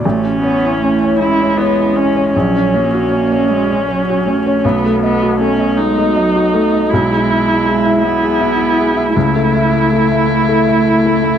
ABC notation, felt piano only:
X:1
M:6/8
L:1/16
Q:3/8=53
K:A
V:1 name="Felt piano"
A,,, C c E C c2 C c E C c | ^A,,, C c F C c2 C c F C c | B,,, A, ^d F A, d2 A, d F A, d | B,,, G, e E G, e2 G, e E G, e |
C,, A, e E A, e2 A, e E A, e |]